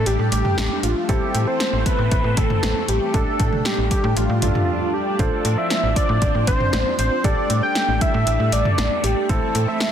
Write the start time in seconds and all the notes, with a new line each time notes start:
Already playing: G3 A3 D4 G4 A4
0.06 A1 G4, closed hi-hat
0.19 A2
0.32 A1 G4, closed hi-hat
0.45 mid tom
0.58 A1, snare, closed hi-hat
0.83 A1 F4, closed hi-hat
1.09 A1 E3 C4 E4 G4 A4, kick, closed hi-hat
1.35 A2, closed hi-hat
1.47 C5
1.60 snare, closed hi-hat
1.73 A1
1.86 B4, kick, closed hi-hat
1.99 A2
2.12 A1, kick, closed hi-hat
2.24 A2
2.37 A1 A4, kick, closed hi-hat
2.50 mid tom
2.63 A1, snare, closed hi-hat
2.88 A1 G4, closed hi-hat
3.14 A1 G3 D4 G4 A4, kick, closed hi-hat
3.40 A2, kick, closed hi-hat
3.53 mid tom
3.65 G4, snare, closed hi-hat
3.78 A1
3.91 G4, kick, closed hi-hat
4.04 A2
4.17 A1 F4, closed hi-hat
4.30 A2
4.42 A1 D4 F4 G4 A4, closed hi-hat, mid tom
4.55 mid tom
4.94 G4
5.19 A1 F3 C4 D4 F4 A4 C5, kick, closed hi-hat
5.45 A2, closed hi-hat
5.58 E5
5.70 snare, closed hi-hat
5.83 A1
5.96 D5, kick, closed hi-hat
6.09 A2
6.22 A1, kick, closed hi-hat
6.35 A2
6.47 A1 C5, kick, closed hi-hat
6.60 mid tom
6.73 A1, snare, closed hi-hat
6.99 A1 C5, closed hi-hat
7.24 A1 G3 A3 D4 G4 A4 D5, kick, closed hi-hat
7.50 A2, closed hi-hat
7.63 G5
7.75 snare, closed hi-hat
7.88 A1
8.01 E5, kick, closed hi-hat
8.14 A2
8.27 A1, closed hi-hat
8.40 A2
8.52 A1 D5, closed hi-hat
8.65 mid tom
8.78 A1, snare, closed hi-hat
9.04 A1 G4, closed hi-hat
9.29 A1 E3 C4 E4 A4, kick, closed hi-hat
9.55 A2, closed hi-hat
9.68 E5
9.80 snare, closed hi-hat